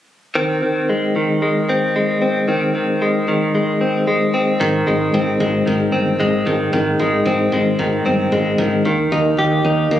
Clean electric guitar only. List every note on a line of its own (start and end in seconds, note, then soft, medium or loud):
0.35 0.63 D#3 medium
0.35 1.69 C4 medium
0.63 1.15 D#3 soft
0.89 1.42 G#3 soft
1.16 2.48 D#3 soft
1.42 1.96 G#3 soft
1.69 2.21 C4 medium
1.96 3.01 G#3 medium
2.22 2.48 C4 medium
2.48 2.74 D#3 medium
2.48 3.81 C4 medium
2.75 3.28 D#3 medium
3.02 3.54 G#3 soft
3.28 4.60 D#3 soft
3.55 4.07 G#3 medium
3.81 4.33 C4 medium
4.07 4.87 G#3 medium
4.34 5.14 C4 medium
4.60 5.66 D#3 medium
4.87 5.39 G#3 medium
5.14 5.91 C4 medium
5.40 6.18 G#3 medium
5.66 6.46 D#3 medium
5.92 7.25 C4 medium
6.20 6.99 G#3 medium
6.46 6.73 D#3 soft
6.73 7.79 D#3 medium
7.00 7.52 G#3 medium
7.27 8.05 C4 medium
7.53 8.31 G#3 medium
7.79 8.59 D#3 medium
8.06 8.90 C4 medium
8.32 8.90 G#3 medium
8.59 8.85 D#3 medium
8.86 10.00 D#3 medium
9.12 9.64 D#4 medium
9.38 10.00 G4 medium
9.65 10.00 D#4 medium
9.92 10.00 A#3 medium